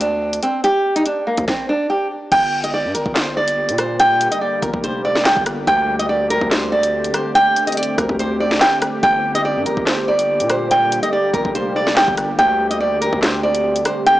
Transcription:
Already playing: 808-style bass D2
0.01 nylon-string guitar D4, closed hi-hat
0.33 closed hi-hat
0.43 nylon-string guitar C4, closed hi-hat
0.64 nylon-string guitar G4, closed hi-hat
0.96 nylon-string guitar D#4, closed hi-hat
1.06 nylon-string guitar D4, closed hi-hat
1.27 nylon-string guitar A#3
1.37 808-style bass D2, kick, closed hi-hat
1.48 nylon-string guitar C4, kick, snare
1.69 nylon-string guitar D4
1.90 nylon-string guitar G4
2.32 808-style bass G1, ambient pad D3 G3 A#3 G4, nylon-string guitar G5, kick, closed hi-hat, crash
2.64 nylon-string guitar D#5, closed hi-hat
2.74 nylon-string guitar D5
2.85 808-style bass G2
2.94 808-style bass G1, nylon-string guitar A#4, closed hi-hat
3.06 808-style bass G1, kick
3.15 nylon-string guitar C5, snare, clap, closed hi-hat
3.37 nylon-string guitar D5
3.48 closed hi-hat
3.69 808-style bass A#2, closed hi-hat
3.78 nylon-string guitar C5, cross-stick, closed hi-hat
4.00 nylon-string guitar G5, closed hi-hat
4.21 closed hi-hat
4.31 nylon-string guitar D#5, closed hi-hat
4.41 nylon-string guitar D5
4.62 808-style bass G1, nylon-string guitar A#4, kick, closed hi-hat
4.74 808-style bass F1, kick
4.84 nylon-string guitar C5, closed hi-hat
5.05 nylon-string guitar D5
5.15 snare
5.25 nylon-string guitar G5, snare, clap, closed hi-hat
5.37 808-style bass G1, kick
5.46 cross-stick, closed hi-hat
5.67 808-style bass D2, ambient pad A3 C4 G4, nylon-string guitar G5, kick, closed hi-hat
5.99 nylon-string guitar D#5, closed hi-hat
6.09 nylon-string guitar D5
6.30 nylon-string guitar A#4, closed hi-hat
6.41 808-style bass D2, kick
6.51 nylon-string guitar C5, snare, clap, closed hi-hat
6.72 nylon-string guitar D5
6.83 closed hi-hat
7.04 closed hi-hat
7.14 nylon-string guitar C5, cross-stick, closed hi-hat
7.35 nylon-string guitar G5, closed hi-hat
7.56 closed hi-hat
7.67 nylon-string guitar D#5, closed hi-hat
7.72 closed hi-hat
7.77 nylon-string guitar D5, closed hi-hat
7.83 closed hi-hat
7.98 808-style bass D2, nylon-string guitar A#4, kick, cross-stick, closed hi-hat
8.09 808-style bass D2, kick
8.19 nylon-string guitar C5, closed hi-hat
8.40 nylon-string guitar D5
8.51 snare
8.61 nylon-string guitar G5, snare, clap, closed hi-hat
8.82 cross-stick, closed hi-hat
9.03 808-style bass G1, ambient pad D3 G3 A#3, nylon-string guitar G5, kick, closed hi-hat
9.35 nylon-string guitar D#5, closed hi-hat
9.45 nylon-string guitar D5
9.56 808-style bass G2
9.66 808-style bass G1, nylon-string guitar A#4, closed hi-hat
9.77 808-style bass G1, kick
9.86 nylon-string guitar C5, snare, clap, closed hi-hat
10.08 nylon-string guitar D5
10.19 closed hi-hat
10.40 808-style bass A#2, closed hi-hat
10.50 nylon-string guitar C5, cross-stick, closed hi-hat
10.71 nylon-string guitar G5, closed hi-hat
10.92 closed hi-hat
11.03 nylon-string guitar D#5, closed hi-hat
11.13 nylon-string guitar D5
11.33 808-style bass G1, nylon-string guitar A#4, kick, closed hi-hat
11.45 808-style bass F1, kick
11.55 nylon-string guitar C5, closed hi-hat
11.76 nylon-string guitar D5
11.87 snare
11.97 nylon-string guitar G5, snare, clap, closed hi-hat
12.08 808-style bass G1, kick
12.17 cross-stick, closed hi-hat
12.39 808-style bass D2, ambient pad D3 A3 C4, nylon-string guitar G5, kick, closed hi-hat
12.70 nylon-string guitar D#5, closed hi-hat
12.80 nylon-string guitar D5
13.01 nylon-string guitar A#4, closed hi-hat
13.13 808-style bass D2, kick
13.23 nylon-string guitar C5, snare, clap, closed hi-hat
13.43 nylon-string guitar D5
13.55 closed hi-hat
13.76 closed hi-hat
13.85 nylon-string guitar C5, cross-stick, closed hi-hat
14.06 nylon-string guitar G5, closed hi-hat

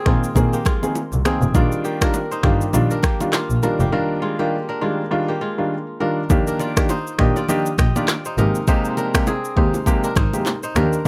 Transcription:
Already playing: kora A#3 C4 D#4 G#4 A#4
0.06 double bass A#1, grand piano D#3 A#3 C4 G#4, kora G#3 F4, finger snap, kick, cross-stick
0.24 shaker
0.36 double bass A#1, grand piano D#3 A#3 C4 G#4, kick, low conga, shaker
0.53 kora A#3 G4, shaker
0.65 kora G#3 F4, finger snap, kick, cross-stick, high bongo, low conga, shaker
0.83 grand piano D#3 A#3 C4 G#4, low bongo, shaker
0.95 high bongo, shaker
1.12 double bass C2, shaker
1.25 grand piano D#3 A#3 C4 G#4, kora C4 G#4, finger snap, cross-stick, low bongo, shaker
1.42 double bass F1, shaker
1.54 double bass A#1, grand piano D#3 G3 D4 F4, kora F4 D5, kick, low conga, shaker
1.72 shaker
1.84 kora A#3 G4, shaker
2.01 grand piano D#3 G3 D4 F4, kora D4 A#4, finger snap, kick, cross-stick, shaker
2.14 high bongo, shaker
2.31 kora D#4 C5, shaker
2.43 double bass G1, grand piano D#3 G3 D4 F4, kora A#3 G4, finger snap, kick, cross-stick
2.61 shaker
2.73 double bass A#1, grand piano D#3 G3 D4 F4, low conga, shaker
2.91 kora D4 A#4, shaker
3.03 kora A#3 G4, finger snap, kick, cross-stick, high bongo, low conga, shaker
3.20 grand piano D#3 G3 D4 F4, low bongo, shaker
3.33 kora A#3 F4, finger snap, cross-stick, clap, high bongo, shaker
3.50 double bass A#1, shaker
3.63 grand piano D#3 G3 D4 F4, kora D4 A#4, low bongo, shaker
3.80 double bass F1, kora A#3 G4, shaker
3.92 grand piano D#3 G3 D4 F4, kora D4 A#4
4.22 kora G#3 F4
4.39 grand piano D#3 G3 D4 F4, kora A#3 G4
4.69 kora D4 A#4
4.81 grand piano D#3 G3 D4 F4, kora G#3 F4
5.11 grand piano D#3 G3 D4 F4
5.28 kora A#3 G4
5.41 kora G#3 F4
5.58 grand piano D#3 G3 D4 F4
6.00 grand piano D#3 G3 D4 F4, kora D4 A#4
6.30 double bass D#2, grand piano D#3 A#3 D4 G4, kick, low conga, shaker
6.47 kora D4 A#4, shaker
6.59 kora F4 D5, low bongo, shaker
6.77 grand piano D#3 A#3 D4 G4, finger snap, kick, cross-stick, shaker
6.89 kora D#4 C5, high bongo, shaker
7.07 shaker
7.19 double bass A#1, grand piano D#3 A#3 D4 G4, kora G4 D#5, finger snap, kick, cross-stick
7.36 kora F4 D5, high bongo, shaker
7.49 grand piano D#3 A#3 D4 G4, kora G4 D#5, low conga, shaker
7.66 shaker
7.78 double bass A#1, kora G4 D#5, finger snap, kick, cross-stick, low conga, shaker
7.96 grand piano D#3 A#3 D4 G4, kora F4 D5, low bongo, shaker
8.08 finger snap, cross-stick, clap, high bongo, shaker
8.25 kora D#4 C5, shaker
8.38 double bass G#1, grand piano C3 G#3 A#3 G4, kora D#4 A#4, low bongo, shaker
8.55 shaker
8.67 grand piano C3 G#3 A#3 G4, kora D#4 C5, kick, low conga, shaker
8.85 shaker
8.97 kora D4 A#4, low bongo, shaker
9.14 grand piano C3 G#3 A#3 G4, finger snap, kick, cross-stick, shaker
9.27 kora C4 G#4, high bongo, shaker
9.45 shaker
9.57 double bass D#2, grand piano C3 G#3 A#3 G4, kora D#4 C5, kick
9.74 high bongo, shaker
9.86 grand piano C3 G#3 A#3 G4, kick, low conga, shaker
10.04 kora D4 A#4, shaker
10.16 double bass G#1, kora D#4 C5, finger snap, kick, cross-stick, low conga, shaker
10.33 grand piano C3 G#3 A#3 G4, low bongo, shaker
10.46 clap, high bongo, shaker
10.63 kora D#4 C5, shaker
10.75 double bass D#2, grand piano D#3 A#3 D4 G4, kora D4 A#4, finger snap, cross-stick, low bongo, shaker
10.93 shaker

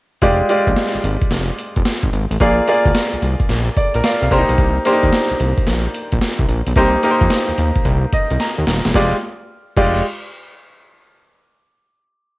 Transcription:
0.22 analog synth bass F1, grand piano G#3 F4 G4 D5, kick, closed hi-hat
0.49 grand piano G#3 F4 G4 D5, closed hi-hat
0.67 analog synth bass A#1, kick, closed hi-hat
0.76 snare, closed hi-hat
0.95 analog synth bass G#1
1.04 analog synth bass G#1, closed hi-hat
1.21 kick, closed hi-hat
1.31 analog synth bass F1, snare, closed hi-hat
1.59 closed hi-hat
1.76 analog synth bass F1, kick, closed hi-hat
1.85 snare, closed hi-hat
2.03 analog synth bass G#1, kick
2.13 analog synth bass G#1, closed hi-hat
2.31 analog synth bass A1, closed hi-hat
2.40 analog synth bass A#1, grand piano A#3 F4 G#4 D5, kick, closed hi-hat
2.68 grand piano A#3 F4 G#4 D5, closed hi-hat
2.85 analog synth bass D2, kick, closed hi-hat
2.95 snare, closed hi-hat
3.13 analog synth bass C2
3.22 analog synth bass C2, closed hi-hat
3.40 kick, closed hi-hat
3.49 analog synth bass A#1, snare, closed hi-hat
3.77 grand piano D5, kick, closed hi-hat
3.94 analog synth bass A#1, grand piano A#4, closed hi-hat
4.04 grand piano D5 F5, snare, closed hi-hat
4.22 analog synth bass C2, grand piano F5
4.31 analog synth bass C2, grand piano A#3 D4 G4 C5 A#5, kick, closed hi-hat
4.38 grand piano D#4
4.49 analog synth bass B1, closed hi-hat
4.58 analog synth bass C2, kick, closed hi-hat
4.85 grand piano A#3 D4 G4 C5, closed hi-hat
4.92 grand piano D#4
5.03 analog synth bass D#2, kick, closed hi-hat
5.13 snare, closed hi-hat
5.31 analog synth bass C2
5.40 analog synth bass C2, closed hi-hat
5.58 kick, closed hi-hat
5.67 analog synth bass A#1, snare, closed hi-hat
5.95 closed hi-hat
6.12 analog synth bass A#1, kick, closed hi-hat
6.21 snare, closed hi-hat
6.39 analog synth bass C2, kick
6.49 analog synth bass A#1, closed hi-hat
6.67 analog synth bass B1, closed hi-hat
6.76 analog synth bass C2, grand piano A#3 D#4 G4 C5, kick, closed hi-hat
7.03 grand piano A#3 D#4 G4 A#4, closed hi-hat
7.11 grand piano C5
7.21 analog synth bass F2, kick, closed hi-hat
7.30 snare, closed hi-hat
7.48 analog synth bass D#2
7.58 analog synth bass D#2, closed hi-hat
7.76 kick, closed hi-hat
7.85 analog synth bass C2, kick, closed hi-hat
8.13 grand piano D#5, kick, closed hi-hat
8.30 analog synth bass C2, closed hi-hat
8.40 grand piano A#5, snare, closed hi-hat
8.58 analog synth bass D#2
8.67 analog synth bass D#1, snare, closed hi-hat
8.85 analog synth bass E1, snare, closed hi-hat
8.94 analog synth bass F1, grand piano G#3 F4 G4 D5, kick, snare
9.77 analog synth bass F1, grand piano G#3 F4 G4 D5, kick, crash

